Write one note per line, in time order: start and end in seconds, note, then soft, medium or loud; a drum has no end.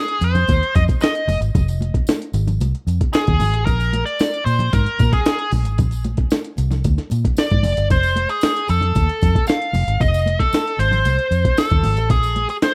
0.00 0.24 G#4 medium
0.08 closed hi-hat medium
0.21 0.45 F2 loud
0.21 0.75 C5 medium
0.21 closed hi-hat medium
0.21 tambourine medium
0.35 closed hi-hat medium
0.35 tambourine soft
0.35 low conga medium
0.48 0.60 D#2 medium
0.48 kick medium
0.48 closed hi-hat medium
0.48 tambourine medium
0.48 high conga medium
0.63 closed hi-hat soft
0.75 0.87 F2 loud
0.75 0.83 D#5 loud
0.75 kick medium
0.75 closed hi-hat medium
0.75 tambourine medium
0.88 kick medium
0.88 closed hi-hat medium
0.88 tambourine soft
1.01 1.39 D#5 medium
1.01 snare loud
1.01 closed hi-hat medium
1.01 tambourine medium
1.01 muted conga soft
1.15 closed hi-hat soft
1.27 1.39 F1 medium
1.27 open hi-hat medium
1.27 tambourine soft
1.27 muted conga soft
1.27 high conga medium
1.27 low conga medium
1.41 1.53 G#1 medium
1.41 closed hi-hat medium
1.41 tambourine soft
1.55 1.90 F1 medium
1.55 kick medium
1.55 closed hi-hat medium
1.55 tambourine medium
1.55 muted conga soft
1.55 low conga medium
1.68 closed hi-hat soft
1.68 tambourine medium
1.81 closed hi-hat medium
1.81 muted conga soft
1.81 high conga medium
1.94 kick medium
1.94 closed hi-hat medium
2.07 snare loud
2.07 closed hi-hat loud
2.07 tambourine medium
2.07 muted conga soft
2.07 high conga medium
2.22 closed hi-hat medium
2.33 2.57 G#1 loud
2.33 closed hi-hat medium
2.33 tambourine medium
2.33 muted conga soft
2.47 closed hi-hat medium
2.47 tambourine soft
2.47 low conga medium
2.60 2.72 C2 medium
2.60 closed hi-hat loud
2.60 tambourine medium
2.60 muted conga soft
2.60 high conga medium
2.75 closed hi-hat soft
2.87 2.99 F2 medium
2.87 closed hi-hat medium
2.87 tambourine medium
3.01 kick medium
3.01 closed hi-hat medium
3.13 3.65 G#4 medium
3.13 snare loud
3.13 closed hi-hat medium
3.13 tambourine loud
3.13 muted conga soft
3.27 3.39 D#2 medium
3.27 kick medium
3.27 closed hi-hat soft
3.40 3.53 G#1 loud
3.40 open hi-hat medium
3.40 tambourine soft
3.40 muted conga soft
3.40 high conga medium
3.40 low conga medium
3.53 3.65 A1 loud
3.53 closed hi-hat medium
3.65 4.02 A#1 loud
3.65 4.03 A#4 medium
3.65 kick medium
3.65 closed hi-hat medium
3.65 tambourine medium
3.65 muted conga soft
3.65 low conga medium
3.80 closed hi-hat soft
3.80 tambourine medium
3.93 closed hi-hat medium
3.93 muted conga soft
3.93 high conga medium
4.05 4.43 D5 loud
4.05 closed hi-hat medium
4.19 snare loud
4.19 closed hi-hat loud
4.19 tambourine medium
4.19 high conga medium
4.34 closed hi-hat medium
4.45 4.70 A#2 loud
4.45 4.73 C5 medium
4.45 closed hi-hat medium
4.45 tambourine soft
4.45 muted conga soft
4.59 closed hi-hat medium
4.59 low conga loud
4.73 4.85 G#2 medium
4.73 5.13 A#4 medium
4.73 kick loud
4.73 closed hi-hat loud
4.73 tambourine medium
4.73 high conga medium
4.86 closed hi-hat soft
4.99 5.11 A#2 loud
4.99 kick loud
4.99 closed hi-hat medium
4.99 tambourine medium
4.99 muted conga soft
5.13 5.50 G#4 medium
5.13 kick medium
5.13 closed hi-hat medium
5.13 tambourine soft
5.26 snare loud
5.26 closed hi-hat medium
5.26 tambourine medium
5.26 muted conga soft
5.39 closed hi-hat soft
5.52 5.65 A#1 medium
5.52 open hi-hat medium
5.52 tambourine soft
5.52 high conga medium
5.52 low conga medium
5.65 5.79 G#1 medium
5.65 closed hi-hat medium
5.65 tambourine soft
5.78 6.14 A#1 medium
5.78 kick medium
5.78 closed hi-hat medium
5.78 tambourine medium
5.78 low conga medium
5.91 closed hi-hat soft
5.91 tambourine medium
6.04 closed hi-hat medium
6.04 muted conga soft
6.04 high conga medium
6.17 kick medium
6.17 closed hi-hat medium
6.30 snare loud
6.30 closed hi-hat medium
6.30 tambourine loud
6.30 muted conga soft
6.30 high conga medium
6.44 closed hi-hat medium
6.57 6.81 C2 medium
6.57 closed hi-hat medium
6.57 tambourine medium
6.57 muted conga soft
6.71 snare soft
6.71 closed hi-hat medium
6.71 tambourine soft
6.71 low conga medium
6.84 6.96 D2 medium
6.84 kick medium
6.84 closed hi-hat loud
6.84 tambourine soft
6.84 high conga medium
6.98 snare soft
6.98 closed hi-hat soft
7.10 7.23 A#2 medium
7.10 closed hi-hat medium
7.10 tambourine medium
7.10 muted conga soft
7.25 kick loud
7.25 closed hi-hat medium
7.25 high conga medium
7.37 7.87 D5 loud
7.37 snare loud
7.37 closed hi-hat medium
7.37 tambourine medium
7.37 muted conga soft
7.50 7.63 G#2 medium
7.50 kick medium
7.50 closed hi-hat soft
7.63 7.76 F1 medium
7.63 open hi-hat medium
7.63 tambourine soft
7.63 high conga medium
7.63 low conga medium
7.77 7.90 G1 medium
7.77 closed hi-hat medium
7.77 tambourine soft
7.90 8.25 F1 medium
7.90 8.31 C5 medium
7.90 kick loud
7.90 closed hi-hat medium
7.90 tambourine medium
7.90 muted conga soft
7.90 low conga medium
8.03 closed hi-hat soft
8.03 tambourine medium
8.16 closed hi-hat medium
8.16 muted conga soft
8.16 high conga medium
8.29 8.67 G#4 medium
8.29 closed hi-hat medium
8.29 tambourine soft
8.41 snare loud
8.41 closed hi-hat loud
8.41 tambourine medium
8.41 high conga medium
8.57 closed hi-hat soft
8.68 8.93 F2 medium
8.68 9.45 A4 medium
8.68 closed hi-hat medium
8.68 tambourine medium
8.81 closed hi-hat medium
8.81 low conga loud
8.95 9.07 D#2 medium
8.95 kick medium
8.95 closed hi-hat loud
8.95 tambourine soft
8.95 high conga medium
9.09 closed hi-hat soft
9.21 9.34 F2 medium
9.21 kick medium
9.21 closed hi-hat medium
9.21 tambourine medium
9.35 kick medium
9.35 closed hi-hat medium
9.47 10.02 F5 loud
9.47 snare loud
9.47 closed hi-hat medium
9.47 tambourine medium
9.47 muted conga soft
9.62 closed hi-hat soft
9.73 9.86 F1 loud
9.73 open hi-hat medium
9.73 tambourine medium
9.73 high conga medium
9.73 low conga medium
9.87 9.99 G#1 medium
9.87 closed hi-hat medium
10.00 10.35 F1 loud
10.00 10.41 D#5 loud
10.00 kick loud
10.00 closed hi-hat medium
10.00 tambourine medium
10.00 muted conga soft
10.00 low conga medium
10.14 closed hi-hat soft
10.14 tambourine medium
10.26 closed hi-hat medium
10.26 muted conga soft
10.26 high conga medium
10.39 10.80 A4 medium
10.39 kick medium
10.39 closed hi-hat medium
10.53 snare loud
10.53 closed hi-hat medium
10.53 tambourine medium
10.53 high conga medium
10.67 closed hi-hat soft
10.78 11.02 G#1 loud
10.78 11.60 C5 medium
10.78 closed hi-hat medium
10.78 tambourine soft
10.78 muted conga soft
10.91 closed hi-hat soft
10.91 tambourine soft
10.91 low conga loud
11.05 11.17 C2 medium
11.05 closed hi-hat medium
11.05 tambourine medium
11.05 high conga medium
11.19 closed hi-hat soft
11.31 11.43 F2 medium
11.31 closed hi-hat medium
11.31 tambourine medium
11.45 kick loud
11.45 closed hi-hat medium
11.57 12.10 A4 medium
11.57 snare loud
11.57 closed hi-hat medium
11.57 tambourine loud
11.70 11.83 D#2 medium
11.70 kick medium
11.70 closed hi-hat soft
11.83 11.97 G#1 loud
11.83 open hi-hat medium
11.83 tambourine soft
11.83 muted conga soft
11.83 high conga medium
11.83 low conga medium
11.97 12.10 A1 medium
11.97 closed hi-hat medium
11.97 tambourine soft
12.10 12.45 A#1 medium
12.10 12.47 G#4 medium
12.10 kick loud
12.10 closed hi-hat medium
12.10 tambourine soft
12.10 muted conga soft
12.10 low conga medium
12.23 closed hi-hat soft
12.23 tambourine medium
12.36 closed hi-hat medium
12.36 high conga medium
12.49 12.55 G#4 medium
12.49 closed hi-hat medium
12.49 tambourine soft
12.62 12.74 C5 medium
12.62 snare loud
12.62 closed hi-hat medium
12.62 tambourine medium
12.62 high conga medium